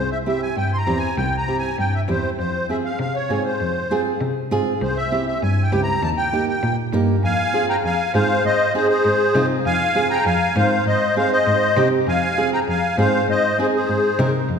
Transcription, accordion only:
0.00 0.10 C5 medium
0.11 0.18 E5 medium
0.27 0.41 E5 medium
0.42 0.56 G#5 medium
0.57 0.71 G5 medium
0.73 0.78 C6 medium
0.77 0.98 A#5 medium
0.97 1.16 G#5 loud
1.17 1.36 G5 medium
1.37 1.56 A#5 medium
1.58 1.77 G#5 medium
1.79 1.94 G5 medium
1.94 2.01 E5 medium
2.10 2.30 C5 medium
2.39 2.67 C5 medium
2.70 2.77 E5 medium
2.85 2.99 F5 medium
3.00 3.16 F5 medium
3.15 3.43 C#5 medium
3.45 4.02 C5 medium
4.82 4.97 C5 medium
4.97 5.25 E5 medium
5.27 5.41 E5 medium
5.42 5.63 G#5 medium
5.63 5.81 G5 medium
5.83 6.03 A#5 loud
6.03 6.10 A5 loud
6.17 6.46 G5 loud
6.49 6.76 G5 medium
7.24 7.66 F5 medium
7.24 7.66 G#5 loud
7.69 7.76 G5 medium
7.69 7.76 A#5 medium
7.84 8.12 F5 medium
7.84 8.12 G#5 medium
8.14 8.43 C5 medium
8.14 8.45 F5 loud
8.45 8.73 C5 medium
8.45 8.73 D#5 medium
8.74 8.88 G#4 medium
8.74 8.87 C5 medium
8.89 9.46 G#4 medium
8.89 9.46 C5 loud
9.65 10.08 F5 medium
9.65 10.12 G#5 loud
10.10 10.25 G5 medium
10.10 10.25 A#5 loud
10.26 10.54 F5 medium
10.26 10.57 G#5 loud
10.56 10.84 C5 medium
10.56 10.84 F5 medium
10.87 11.15 C5 medium
10.87 11.15 D#5 medium
11.17 11.31 C5 medium
11.17 11.31 F5 medium
11.32 11.88 C5 medium
11.32 11.88 D#5 loud
12.08 12.50 F5 medium
12.08 12.50 G#5 loud
12.53 12.60 G5 medium
12.53 12.60 A#5 medium
12.69 12.97 F5 medium
12.69 12.97 G#5 medium
12.99 13.27 C5 medium
12.99 13.27 F5 medium
13.30 13.57 C5 medium
13.30 13.57 D#5 medium
13.60 13.67 G#4 medium
13.60 13.67 C5 medium
13.75 14.31 G#4 medium
13.75 14.31 C5 medium

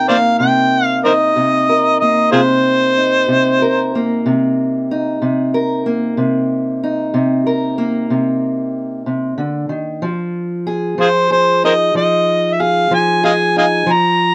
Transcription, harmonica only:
0.09 0.17 C5 medium
0.09 0.17 D5 medium
0.09 0.38 F5 medium
0.39 0.85 G5 medium
0.85 0.99 F5 medium
1.05 1.13 A#4 medium
1.05 1.13 C5 medium
1.05 1.96 D#5 medium
2.00 2.30 D#5 medium
2.32 2.41 F4 medium
2.32 2.41 G#4 medium
2.32 4.20 C5 medium
11.01 11.09 F4 medium
11.01 11.08 G#4 medium
11.01 11.30 C5 medium
11.32 11.61 C5 medium
11.65 11.73 A#4 medium
11.65 11.74 C5 medium
11.65 11.94 D#5 medium
11.97 12.55 D#5 medium
12.53 12.63 E5 medium
12.61 12.92 F5 medium
12.94 13.23 G#5 medium
13.25 13.33 D#5 medium
13.25 13.31 F5 medium
13.25 13.54 G#5 medium
13.58 13.65 D#5 medium
13.58 13.65 F5 medium
13.58 13.93 G#5 medium
13.92 14.35 A#5 loud

